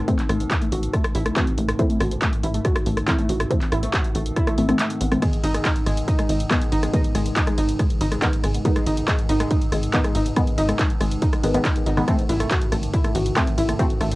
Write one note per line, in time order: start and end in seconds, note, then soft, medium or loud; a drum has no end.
0.00 5.21 G#2 medium
0.00 5.21 D#3 medium
0.08 0.13 E3 medium
0.08 0.13 A3 medium
0.08 0.13 C4 loud
0.08 0.14 F#4 medium
0.08 kick loud
0.08 closed hi-hat medium
0.19 clap soft
0.19 closed hi-hat soft
0.29 0.45 A1 medium
0.29 0.35 A3 medium
0.29 cross-stick medium
0.29 open hi-hat loud
0.40 closed hi-hat medium
0.51 0.55 E4 loud
0.51 kick loud
0.51 clap loud
0.51 closed hi-hat medium
0.61 0.65 A3 medium
0.61 closed hi-hat soft
0.72 0.88 A1 medium
0.72 0.78 F#4 medium
0.72 open hi-hat loud
0.83 closed hi-hat soft
0.93 0.99 A3 medium
0.93 kick loud
0.93 cross-stick medium
0.93 closed hi-hat medium
1.04 cross-stick loud
1.04 closed hi-hat soft
1.15 1.31 A1 loud
1.15 1.19 E4 loud
1.15 open hi-hat loud
1.26 1.30 A3 medium
1.26 cross-stick medium
1.26 closed hi-hat soft
1.36 1.42 E3 loud
1.36 1.42 A3 medium
1.36 1.42 C4 loud
1.36 1.42 F#4 medium
1.36 kick loud
1.36 clap loud
1.36 closed hi-hat medium
1.47 closed hi-hat soft
1.58 1.74 A1 medium
1.58 1.64 A3 medium
1.58 open hi-hat loud
1.69 cross-stick loud
1.69 closed hi-hat medium
1.79 1.85 E3 medium
1.79 1.85 A3 medium
1.79 1.85 C4 loud
1.79 1.83 E4 loud
1.79 kick loud
1.79 closed hi-hat medium
1.90 1.94 A3 medium
1.90 closed hi-hat soft
2.01 2.17 A1 loud
2.01 2.06 F#4 medium
2.01 cross-stick loud
2.01 open hi-hat loud
2.12 closed hi-hat medium
2.22 2.28 A3 medium
2.22 kick loud
2.22 clap loud
2.22 closed hi-hat medium
2.33 closed hi-hat soft
2.43 2.59 A1 medium
2.43 2.47 E4 loud
2.43 open hi-hat loud
2.54 2.58 A3 medium
2.54 closed hi-hat soft
2.65 2.71 F#4 medium
2.65 kick loud
2.65 cross-stick medium
2.65 closed hi-hat medium
2.76 cross-stick loud
2.76 closed hi-hat medium
2.86 3.02 A1 loud
2.86 2.92 A3 medium
2.86 open hi-hat loud
2.97 cross-stick medium
2.97 closed hi-hat soft
3.08 3.13 E3 medium
3.08 3.13 A3 medium
3.08 3.13 C4 loud
3.08 3.12 E4 loud
3.08 kick loud
3.08 clap loud
3.08 closed hi-hat medium
3.19 3.22 A3 medium
3.19 closed hi-hat medium
3.29 3.45 A1 medium
3.29 3.35 F#4 medium
3.29 open hi-hat loud
3.40 cross-stick loud
3.40 closed hi-hat medium
3.51 3.56 E3 loud
3.51 3.56 A3 medium
3.51 3.56 C4 loud
3.51 kick loud
3.51 closed hi-hat medium
3.62 clap soft
3.62 open hi-hat medium
3.72 3.88 A1 medium
3.72 3.76 E4 loud
3.72 cross-stick medium
3.72 open hi-hat loud
3.83 3.87 A3 medium
3.83 closed hi-hat medium
3.94 3.99 F#4 medium
3.94 kick loud
3.94 clap loud
3.94 closed hi-hat medium
4.04 closed hi-hat medium
4.15 4.31 A1 medium
4.15 4.21 A3 medium
4.15 open hi-hat loud
4.26 closed hi-hat medium
4.36 4.40 E4 loud
4.36 kick loud
4.36 cross-stick medium
4.36 closed hi-hat medium
4.47 4.51 A3 medium
4.47 cross-stick medium
4.47 closed hi-hat medium
4.58 4.74 A1 loud
4.58 4.66 E3 medium
4.58 4.66 A3 medium
4.58 4.60 A3 medium
4.58 4.66 C4 medium
4.58 open hi-hat loud
4.69 4.74 E3 loud
4.69 4.74 A3 medium
4.69 4.74 A3 loud
4.69 4.74 C4 loud
4.69 cross-stick medium
4.69 closed hi-hat medium
4.79 4.82 A3 medium
4.79 clap loud
4.79 closed hi-hat medium
4.90 closed hi-hat medium
5.01 5.17 A1 medium
5.01 5.03 B3 medium
5.01 open hi-hat loud
5.12 5.20 E3 medium
5.12 5.15 A3 medium
5.12 5.20 A3 medium
5.12 5.20 C4 medium
5.12 cross-stick medium
5.12 open hi-hat medium
5.22 14.15 G#2 medium
5.22 5.27 D#3 loud
5.22 14.15 D#3 medium
5.22 5.28 G#3 medium
5.22 5.27 G#3 medium
5.22 5.27 B3 loud
5.22 kick loud
5.22 cross-stick medium
5.22 closed hi-hat medium
5.22 ride medium
5.33 closed hi-hat medium
5.33 ride medium
5.43 5.59 G#1 loud
5.43 5.47 D#4 loud
5.43 open hi-hat loud
5.43 ride medium
5.54 5.58 G#3 medium
5.54 cross-stick medium
5.54 closed hi-hat medium
5.54 ride medium
5.65 5.71 D#4 medium
5.65 kick loud
5.65 clap loud
5.65 closed hi-hat medium
5.65 ride medium
5.76 closed hi-hat medium
5.76 ride medium
5.86 6.02 G#1 medium
5.86 5.92 G#3 medium
5.86 cross-stick medium
5.86 open hi-hat loud
5.86 ride medium
5.97 closed hi-hat medium
5.97 ride medium
6.08 6.12 D#4 loud
6.08 kick loud
6.08 closed hi-hat medium
6.08 ride medium
6.19 6.22 G#3 medium
6.19 cross-stick medium
6.19 closed hi-hat medium
6.19 ride medium
6.29 6.45 G#1 loud
6.29 6.35 D#4 medium
6.29 open hi-hat loud
6.29 ride medium
6.40 closed hi-hat medium
6.40 ride medium
6.51 6.56 D#3 medium
6.51 6.56 G#3 medium
6.51 6.56 B3 loud
6.51 kick loud
6.51 cross-stick medium
6.51 clap loud
6.51 closed hi-hat medium
6.51 ride medium
6.62 closed hi-hat medium
6.62 ride medium
6.72 6.88 G#1 medium
6.72 6.76 D#4 loud
6.72 open hi-hat loud
6.72 ride medium
6.83 6.87 G#3 medium
6.83 cross-stick medium
6.83 closed hi-hat medium
6.83 ride medium
6.94 6.99 D#3 loud
6.94 6.99 G#3 medium
6.94 6.99 B3 loud
6.94 6.99 D#4 medium
6.94 kick loud
6.94 closed hi-hat medium
6.94 ride medium
7.04 closed hi-hat medium
7.04 ride medium
7.15 7.31 G#1 loud
7.15 7.21 G#3 medium
7.15 cross-stick medium
7.15 open hi-hat loud
7.15 ride medium
7.26 closed hi-hat medium
7.26 ride medium
7.36 7.40 D#4 loud
7.36 kick loud
7.36 clap loud
7.36 closed hi-hat medium
7.36 ride medium
7.47 7.51 G#3 medium
7.47 cross-stick medium
7.47 closed hi-hat medium
7.47 ride medium
7.58 7.74 G#1 loud
7.58 7.64 D#4 medium
7.58 open hi-hat loud
7.58 ride medium
7.69 closed hi-hat medium
7.69 ride medium
7.79 7.85 G#3 medium
7.79 kick loud
7.79 cross-stick medium
7.79 closed hi-hat medium
7.79 ride medium
7.90 closed hi-hat medium
7.90 ride medium
8.01 8.17 G#1 loud
8.01 8.05 D#4 loud
8.01 open hi-hat loud
8.01 ride medium
8.12 8.15 G#3 medium
8.12 cross-stick medium
8.12 closed hi-hat medium
8.12 ride medium
8.22 8.27 D#3 medium
8.22 8.27 G#3 medium
8.22 8.27 B3 loud
8.22 8.28 D#4 medium
8.22 kick loud
8.22 clap loud
8.22 closed hi-hat medium
8.22 ride medium
8.33 closed hi-hat medium
8.33 ride medium
8.44 8.59 G#1 medium
8.44 8.49 G#3 medium
8.44 cross-stick medium
8.44 open hi-hat loud
8.44 ride medium
8.54 closed hi-hat medium
8.54 ride medium
8.65 8.70 D#3 loud
8.65 8.70 G#3 medium
8.65 8.70 B3 loud
8.65 8.69 D#4 loud
8.65 kick loud
8.65 closed hi-hat medium
8.65 ride medium
8.76 8.80 G#3 medium
8.76 cross-stick medium
8.76 closed hi-hat medium
8.76 ride medium
8.86 9.02 G#1 medium
8.86 8.92 D#4 medium
8.86 open hi-hat loud
8.86 ride medium
8.97 closed hi-hat medium
8.97 ride medium
9.08 9.14 G#3 medium
9.08 kick loud
9.08 cross-stick medium
9.08 clap loud
9.08 closed hi-hat medium
9.08 ride medium
9.19 closed hi-hat medium
9.19 ride medium
9.29 9.45 G#1 medium
9.29 9.33 D#4 loud
9.29 open hi-hat loud
9.29 ride medium
9.40 9.44 G#3 medium
9.40 cross-stick medium
9.40 closed hi-hat medium
9.40 ride medium
9.51 9.56 D#4 medium
9.51 kick loud
9.51 closed hi-hat medium
9.51 ride medium
9.62 closed hi-hat medium
9.62 ride medium
9.72 9.88 G#1 loud
9.72 9.78 G#3 medium
9.72 cross-stick medium
9.72 open hi-hat loud
9.72 ride medium
9.83 closed hi-hat medium
9.83 ride soft
9.93 9.99 D#3 medium
9.93 9.99 G#3 medium
9.93 9.99 B3 loud
9.93 9.97 D#4 loud
9.93 kick loud
9.93 clap loud
9.93 closed hi-hat medium
9.93 ride medium
10.04 10.08 G#3 medium
10.04 cross-stick medium
10.04 closed hi-hat medium
10.04 ride medium
10.15 10.31 G#1 medium
10.15 10.21 D#4 medium
10.15 open hi-hat loud
10.15 ride medium
10.26 closed hi-hat medium
10.26 ride medium
10.36 10.42 D#3 loud
10.36 10.42 G#3 medium
10.36 10.42 B3 loud
10.36 kick loud
10.36 cross-stick medium
10.36 closed hi-hat medium
10.36 ride medium
10.47 closed hi-hat medium
10.47 ride medium
10.58 10.74 G#1 loud
10.58 10.62 D#4 loud
10.58 open hi-hat loud
10.58 ride medium
10.69 10.72 G#3 medium
10.69 cross-stick medium
10.69 closed hi-hat medium
10.69 ride medium
10.79 10.85 D#4 medium
10.79 kick loud
10.79 clap loud
10.79 closed hi-hat medium
10.79 ride medium
10.90 closed hi-hat medium
10.90 ride medium
11.01 11.17 G#1 medium
11.01 11.06 G#3 medium
11.01 cross-stick medium
11.01 open hi-hat loud
11.01 ride medium
11.11 closed hi-hat medium
11.11 ride medium
11.22 11.26 D#4 loud
11.22 kick loud
11.22 closed hi-hat medium
11.22 ride medium
11.33 11.37 G#3 medium
11.33 cross-stick medium
11.33 closed hi-hat medium
11.33 ride medium
11.43 11.59 G#1 loud
11.43 11.52 D#3 medium
11.43 11.52 G#3 medium
11.43 11.52 B3 medium
11.43 11.49 D#4 medium
11.43 open hi-hat loud
11.43 ride medium
11.54 11.60 D#3 loud
11.54 11.60 G#3 medium
11.54 11.60 B3 loud
11.54 closed hi-hat medium
11.54 ride medium
11.65 11.71 G#3 medium
11.65 kick loud
11.65 cross-stick medium
11.65 clap loud
11.65 closed hi-hat medium
11.65 ride medium
11.76 closed hi-hat medium
11.76 ride medium
11.86 12.02 G#1 medium
11.86 11.90 D#4 loud
11.86 open hi-hat loud
11.86 ride medium
11.97 12.06 D#3 medium
11.97 12.01 G#3 medium
11.97 12.06 G#3 medium
11.97 12.06 B3 medium
11.97 cross-stick medium
11.97 open hi-hat medium
11.97 ride medium
12.08 12.13 E3 loud
12.08 12.14 A3 medium
12.08 12.13 A3 medium
12.08 12.13 C4 loud
12.08 kick loud
12.08 cross-stick medium
12.08 closed hi-hat medium
12.08 ride medium
12.19 closed hi-hat soft
12.19 ride medium
12.29 12.45 A1 loud
12.29 12.33 E4 loud
12.29 open hi-hat loud
12.29 ride medium
12.40 12.44 A3 medium
12.40 cross-stick medium
12.40 closed hi-hat medium
12.40 ride medium
12.51 12.56 F#4 medium
12.51 kick loud
12.51 clap loud
12.51 closed hi-hat medium
12.51 ride medium
12.61 closed hi-hat soft
12.61 ride medium
12.72 12.88 A1 medium
12.72 12.78 A3 medium
12.72 cross-stick medium
12.72 open hi-hat loud
12.72 ride medium
12.83 closed hi-hat soft
12.83 ride medium
12.93 12.97 E4 loud
12.93 kick loud
12.93 closed hi-hat medium
12.93 ride medium
13.04 13.08 A3 medium
13.04 cross-stick medium
13.04 closed hi-hat medium
13.04 ride medium
13.15 13.31 A1 loud
13.15 13.21 F#4 medium
13.15 open hi-hat loud
13.15 ride medium
13.26 closed hi-hat soft
13.26 ride medium
13.36 13.42 E3 medium
13.36 13.42 A3 medium
13.36 13.42 C4 loud
13.36 kick loud
13.36 cross-stick medium
13.36 clap loud
13.36 closed hi-hat medium
13.36 ride medium
13.47 closed hi-hat soft
13.47 ride medium
13.58 13.74 A1 medium
13.58 13.62 E4 loud
13.58 open hi-hat loud
13.58 ride medium
13.69 13.72 A3 medium
13.69 cross-stick medium
13.69 closed hi-hat medium
13.69 ride medium
13.79 13.85 E3 loud
13.79 13.85 A3 medium
13.79 13.85 C4 loud
13.79 13.85 F#4 medium
13.79 kick loud
13.79 closed hi-hat medium
13.79 ride medium
13.90 closed hi-hat soft
13.90 ride medium
14.01 14.15 A1 medium
14.01 14.06 A3 medium
14.01 cross-stick medium
14.01 open hi-hat loud
14.01 ride medium
14.12 closed hi-hat soft
14.12 ride medium